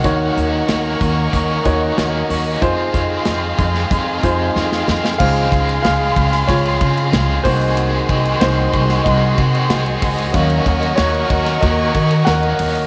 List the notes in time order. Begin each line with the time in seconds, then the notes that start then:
Already playing: F#5
0.04 D#2 D#3 A#3 C#4 D#4 F#4 A#4 C#5 D#5 C#6, kick, closed hi-hat
0.37 D#2 A#3 C#4 F#4, closed hi-hat
0.68 D#2 D#3 A#3 C#4 F#4, snare, closed hi-hat
1.01 D#2 A#3 C#4 F#4, kick, closed hi-hat
1.33 D#2 D#3 A#3 C#4 F#4, kick, closed hi-hat
1.65 D#2 D#4 F#4 A#4 C#5, kick, closed hi-hat
1.98 D#2 D#3 A#3 C#4 F#4, snare, closed hi-hat
2.30 D#2 A#3 C#4 F#4, open hi-hat
2.61 F2 C3 D#3 G#3 C4 D#4 F4 G#4 C5 F5 C6, kick, closed hi-hat
2.94 F2 D#3 G#3 C4 F4, kick, closed hi-hat
3.25 F2 D#3 G#3 C4 F4, snare, closed hi-hat
3.58 F2 D#3 G#3 C4 F4, kick, closed hi-hat
3.75 snare
3.91 F2 C3 D#3 G#3 C4 F4, kick, closed hi-hat
4.23 F2 D#4 F4 G#4 C5, kick, closed hi-hat
4.56 F2 D#3 G#3 C4 F4, snare
4.72 snare
4.87 F2 D#3 G#3 C4 F4, snare
5.05 snare
5.18 C#2 C#3 F3 G#3 C4 D#4 F4 G#4 C5 F5 C6, kick, crash
5.36 ride
5.52 C#2 G#3 C4 F4, kick, ride
5.69 ride
5.83 C#2 F3 G#3 C4 F4 G#4 F5, snare, ride
6.16 C#2 G#3 C4 F4, kick, ride
6.33 snare, ride
6.47 C#2 C#3 F3 G#3 C4 F4 C#5, kick, ride
6.65 ride
6.81 C#3 G#3 C4 F4, kick, ride
6.97 ride
7.13 C#2, snare, ride
7.44 C2 C3 D#3 G#3 A#3 C4 D#4 F#4 C5 D#5 C6, kick, open hi-hat, ride
7.61 ride
7.77 hi-hat pedal, ride
8.09 C2 G#3 C4 F#4, kick, ride
8.25 ride
8.40 C2 D#3 G#3 A#3 C4 D#4 F#4 C5, snare, ride
8.73 C2 G#3 C4 F#4, kick, ride
8.90 snare, ride
9.04 C2 C3 D#3 G#3 C4 F#4 D#5, kick, ride
9.37 C3 G#3 C4 F#4, kick, ride
9.55 ride
9.70 C2, snare, ride
9.86 ride
10.02 C#2, kick, open hi-hat, ride
10.18 ride
10.32 D#2 D#3 F#3 A#3 C#4 F#4 A#4 F5 C#6, kick, hi-hat pedal, ride
10.50 ride
10.66 D#2 A#3 C#4 F#4, kick, ride
10.83 ride
10.96 D#2 D#3 A#3 F#4 C#5, snare, ride
11.00 C#4 F#4
11.14 ride
11.30 D#2 A#3 C#4 F#4, kick, ride
11.46 snare, ride
11.61 D#2 D#3 A#3 C#4 F#4 D#5, kick, ride
11.94 D#3 A#3 C#4 F#4, kick, ride
12.11 ride
12.25 D#2 A#4 F#5, snare, ride
12.43 ride
12.59 D#2, open hi-hat, ride
12.75 ride